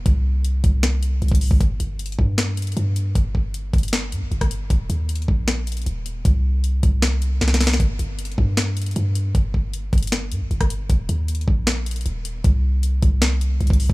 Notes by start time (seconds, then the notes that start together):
0.06 C2, kick, closed hi-hat
0.45 closed hi-hat
0.64 C2, kick, closed hi-hat
0.83 snare, closed hi-hat
1.03 closed hi-hat
1.22 C2, closed hi-hat
1.28 C2, kick, closed hi-hat
1.35 closed hi-hat
1.41 open hi-hat
1.51 C2, kick
1.61 G1, kick, closed hi-hat
1.80 G1, closed hi-hat
1.99 closed hi-hat
2.06 closed hi-hat
2.12 closed hi-hat
2.19 G2, kick
2.38 snare, closed hi-hat
2.57 closed hi-hat
2.62 closed hi-hat
2.67 closed hi-hat
2.72 closed hi-hat
2.77 G2, closed hi-hat
2.96 closed hi-hat
3.15 G1, kick, closed hi-hat
3.35 G1, kick
3.54 closed hi-hat
3.73 G1, kick, closed hi-hat
3.78 closed hi-hat
3.83 closed hi-hat
3.88 closed hi-hat
3.93 snare, closed hi-hat
4.12 G2, closed hi-hat
4.22 G1
4.31 G1, closed hi-hat
4.41 G1, kick, cross-stick, closed hi-hat
4.51 closed hi-hat
4.70 D#1, kick, closed hi-hat
4.90 D#2, closed hi-hat
5.09 closed hi-hat
5.15 closed hi-hat
5.22 closed hi-hat
5.28 A#1, kick
5.48 snare, closed hi-hat
5.67 closed hi-hat
5.72 closed hi-hat
5.77 closed hi-hat
5.82 closed hi-hat
5.86 D#1, closed hi-hat
6.06 closed hi-hat
6.25 C2, kick, closed hi-hat
6.64 closed hi-hat
6.83 C2, kick, closed hi-hat
7.02 snare, closed hi-hat
7.22 closed hi-hat
7.41 C2, snare, closed hi-hat
7.48 snare, closed hi-hat
7.54 snare, closed hi-hat
7.61 snare, open hi-hat
7.67 snare
7.73 snare
7.80 G1, kick, closed hi-hat
7.99 G1, closed hi-hat
8.19 closed hi-hat
8.25 closed hi-hat
8.32 closed hi-hat
8.38 G2, kick
8.57 snare, closed hi-hat
8.77 closed hi-hat
8.82 closed hi-hat
8.86 closed hi-hat
8.91 closed hi-hat
8.96 G2, closed hi-hat
9.15 closed hi-hat
9.35 G1, kick, closed hi-hat
9.54 G1, kick
9.73 closed hi-hat
9.93 G1, kick, closed hi-hat
9.98 closed hi-hat
10.03 closed hi-hat
10.07 closed hi-hat
10.12 snare, closed hi-hat
10.32 G2, closed hi-hat
10.41 G1
10.51 G1, closed hi-hat
10.61 G1, kick, cross-stick, closed hi-hat
10.70 closed hi-hat
10.90 D#1, kick, closed hi-hat
11.09 D#2, closed hi-hat
11.28 closed hi-hat
11.35 closed hi-hat
11.41 closed hi-hat
11.48 A#1, kick
11.67 snare, closed hi-hat
11.86 closed hi-hat
11.91 closed hi-hat
11.96 closed hi-hat
12.01 closed hi-hat
12.06 D#1, closed hi-hat
12.25 closed hi-hat
12.44 C2, kick, closed hi-hat
12.83 closed hi-hat
13.02 C2, kick, closed hi-hat
13.22 snare, closed hi-hat
13.41 closed hi-hat
13.61 C2, closed hi-hat
13.67 C2, kick, closed hi-hat
13.73 closed hi-hat
13.80 open hi-hat
13.90 C2, kick